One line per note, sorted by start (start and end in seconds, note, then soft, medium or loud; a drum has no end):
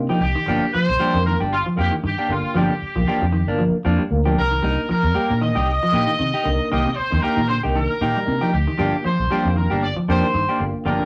0.00 0.20 A#3 loud
0.00 0.20 D4 medium
0.00 0.20 D#4 loud
0.00 0.20 F4 loud
0.09 0.22 F3 medium
0.09 0.25 D#4 soft
0.09 0.24 G4 medium
0.21 0.33 C2 medium
0.21 0.70 G4 loud
0.35 0.41 D#3 medium
0.46 0.59 G1 loud
0.46 0.64 F3 medium
0.46 0.78 A#3 medium
0.46 0.65 A#3 medium
0.46 0.79 D4 medium
0.46 0.65 D4 medium
0.46 0.79 F4 medium
0.46 0.79 G4 medium
0.46 0.65 G4 medium
0.46 muted clean electric guitar stroke medium
0.74 0.87 F3 medium
0.74 1.22 C5 loud
0.74 muted fingered electric bass stroke soft
0.89 0.98 C2 loud
0.99 1.16 F3 medium
0.99 1.13 G3 medium
0.99 1.17 A#3 medium
0.99 1.17 D4 medium
0.99 1.17 G4 medium
0.99 muted fingered electric bass stroke soft
1.14 1.35 F2 loud
1.14 1.44 A#3 medium
1.14 1.44 D4 medium
1.14 1.44 F4 medium
1.14 1.44 A#4 medium
1.26 1.33 D#3 medium
1.26 1.38 A#4 medium
1.40 1.61 G1 medium
1.40 1.53 G3 medium
1.40 1.55 D4 soft
1.40 1.54 G4 medium
1.52 1.64 F4 medium
1.66 1.79 F3 medium
1.76 1.89 F2 medium
1.76 1.94 F3 medium
1.76 2.01 A#3 medium
1.76 1.94 A#3 medium
1.76 2.01 D4 medium
1.76 2.01 F4 medium
1.76 2.02 G4 medium
1.76 1.95 G4 medium
1.80 1.91 G4 medium
1.91 1.97 D#3 medium
2.04 2.15 G2 loud
2.04 2.17 D#3 medium
2.04 2.29 G4 medium
2.18 2.33 A#3 soft
2.18 2.33 D4 soft
2.18 2.33 G4 medium
2.29 2.41 G1 medium
2.29 2.43 D3 medium
2.29 2.60 A#3 medium
2.29 2.60 D4 medium
2.29 2.61 F4 medium
2.29 2.56 F4 medium
2.29 2.60 G4 medium
2.55 2.67 G1 loud
2.55 2.62 F3 medium
2.55 2.72 F3 medium
2.55 2.73 A#3 medium
2.55 2.73 D4 medium
2.55 2.73 G4 medium
2.61 3.62 G4 medium
2.68 2.82 D3 medium
2.82 muted fingered electric bass stroke soft
2.96 3.05 C2 medium
2.96 3.09 F3 medium
2.96 3.20 A#3 medium
2.96 3.20 D4 medium
2.96 3.20 F4 medium
2.96 3.21 G4 medium
3.07 3.24 F3 medium
3.07 3.24 A#3 medium
3.07 3.25 D4 medium
3.07 3.25 G4 medium
3.07 muted fingered electric bass stroke soft
3.22 3.42 F2 loud
3.22 3.28 F3 medium
3.33 3.46 D#3 medium
3.47 3.68 G1 medium
3.47 3.78 A#3 loud
3.47 3.63 A#3 medium
3.47 3.78 D4 loud
3.47 3.62 D4 medium
3.47 3.78 F4 loud
3.47 3.78 A#4 loud
3.59 3.72 F3 medium
3.85 3.97 F2 loud
3.85 3.92 F3 medium
3.85 4.02 F3 medium
3.85 4.02 A#3 medium
3.85 4.02 D4 medium
3.85 muted clean electric guitar stroke medium
3.99 4.12 G3 medium
4.11 4.34 D2 medium
4.11 4.36 A#3 loud
4.11 4.36 D4 loud
4.11 4.36 F4 medium
4.11 4.36 A#4 loud
4.25 4.39 F3 medium
4.25 4.41 A#3 soft
4.25 4.40 D4 soft
4.25 4.40 G4 medium
4.37 4.61 C2 medium
4.37 4.86 A#4 loud
4.51 4.57 D#3 medium
4.62 4.75 C2 loud
4.62 4.76 G3 medium
4.62 4.94 A#3 medium
4.62 4.94 D4 medium
4.62 4.94 D#4 medium
4.62 4.80 D#4 medium
4.62 4.94 G4 medium
4.62 muted clean electric guitar stroke medium
4.89 5.02 F3 medium
4.89 5.38 A#4 loud
4.89 muted fingered electric bass stroke soft
5.03 5.12 F2 loud
5.14 5.28 G3 medium
5.14 5.32 A#3 medium
5.14 5.32 G4 medium
5.14 muted fingered electric bass stroke soft
5.29 5.51 A#2 loud
5.29 5.59 A#3 medium
5.29 5.59 D4 medium
5.29 5.59 D#4 medium
5.29 5.59 G4 medium
5.42 5.49 D#3 medium
5.42 6.67 D#5 loud
5.55 5.76 C2 medium
5.55 5.69 G3 medium
5.55 5.71 D#4 soft
5.55 5.70 G4 medium
5.83 5.96 F3 medium
5.91 6.05 A#2 medium
5.91 6.17 A#3 medium
5.91 6.10 A#3 medium
5.91 6.17 D4 medium
5.91 6.17 D#4 medium
5.91 6.10 D#4 medium
5.91 6.17 F4 medium
5.91 6.11 G4 medium
6.08 6.13 D#3 medium
6.19 6.31 C3 loud
6.19 6.32 D#3 medium
6.34 6.49 D#4 soft
6.34 6.48 G4 medium
6.43 6.57 C2 loud
6.43 6.58 D3 medium
6.43 6.75 A#3 medium
6.43 6.75 D4 medium
6.43 6.75 D#4 medium
6.43 6.76 A#4 loud
6.72 6.83 C2 loud
6.72 6.79 D#3 medium
6.72 6.88 A#3 medium
6.72 6.89 D#4 medium
6.72 6.89 G4 medium
6.72 6.96 D#5 loud
6.86 6.99 C3 medium
6.96 7.22 C5 loud
6.96 muted fingered electric bass stroke soft
7.10 7.21 F2 loud
7.10 7.25 D#3 medium
7.10 7.35 A#3 medium
7.10 7.35 D4 medium
7.10 7.35 D#4 medium
7.10 7.35 G4 loud
7.21 7.40 A#3 medium
7.21 7.40 D#4 medium
7.21 7.40 G4 medium
7.21 7.48 A#4 loud
7.21 muted fingered electric bass stroke soft
7.37 7.58 A#2 loud
7.37 7.43 D#3 medium
7.48 7.62 D3 medium
7.48 7.60 C5 medium
7.63 7.85 C2 medium
7.63 7.93 A#3 medium
7.63 7.93 D4 medium
7.63 7.94 D#4 medium
7.63 7.79 D#4 soft
7.63 7.78 G4 medium
7.63 7.94 A#4 medium
7.75 7.88 D#3 medium
7.75 8.49 A#4 loud
8.01 8.13 A#2 medium
8.01 8.09 D#3 medium
8.01 8.18 A#3 medium
8.01 8.18 D#4 medium
8.01 8.18 G4 medium
8.17 8.29 G3 medium
8.26 8.39 C3 loud
8.26 8.51 A#3 medium
8.26 8.51 D4 medium
8.26 8.51 D#4 medium
8.26 8.51 G4 loud
8.41 8.54 F3 medium
8.41 8.56 D#4 medium
8.41 8.56 G4 medium
8.53 8.65 D2 medium
8.53 9.05 G4 loud
8.68 8.73 D#3 medium
8.78 8.91 G1 loud
8.78 8.95 F3 medium
8.78 8.92 G3 medium
8.78 9.10 A#3 medium
8.78 8.95 A#3 medium
8.78 9.10 D4 medium
8.78 8.96 D4 medium
8.78 9.10 F4 medium
8.78 9.10 G4 medium
8.78 8.96 G4 medium
9.05 9.18 F3 medium
9.05 9.54 C5 medium
9.05 muted fingered electric bass stroke soft
9.19 9.28 C2 loud
9.31 9.48 F3 medium
9.31 9.44 G3 medium
9.31 9.48 A#3 medium
9.31 9.48 D4 medium
9.31 9.48 G4 medium
9.31 muted fingered electric bass stroke soft
9.43 9.66 F2 loud
9.43 9.74 A#3 medium
9.43 9.75 D4 medium
9.43 9.74 F4 medium
9.43 9.74 G4 medium
9.56 9.64 D#3 medium
9.56 9.81 A#4 medium
9.70 9.92 G1 medium
9.70 9.84 G3 medium
9.70 9.86 A#3 soft
9.70 9.86 D4 medium
9.70 9.85 G4 medium
9.83 9.95 D5 loud
9.97 10.10 F3 medium
10.08 10.20 F2 medium
10.08 10.25 F3 medium
10.08 10.33 A#3 medium
10.08 10.26 A#3 medium
10.08 10.33 D4 medium
10.08 10.26 D4 medium
10.08 10.34 F4 medium
10.08 10.26 G4 medium
10.08 10.33 A#4 medium
10.08 10.58 C5 medium
10.23 10.29 D#3 medium
10.34 10.46 G2 loud
10.34 10.48 D#3 medium
10.49 10.64 A#3 soft
10.49 10.64 D4 soft
10.49 10.63 G4 medium
10.59 10.72 G1 loud
10.59 10.73 D3 medium
10.59 10.91 A#3 medium
10.59 10.92 D4 medium
10.59 10.92 F4 medium
10.59 10.92 G4 medium
10.85 10.97 G1 loud
10.85 10.93 D3 medium
10.85 11.03 F3 medium
10.85 11.03 A#3 medium
10.85 11.03 D4 medium
10.85 11.03 G4 medium
10.85 11.05 A#4 loud
10.99 11.05 D3 medium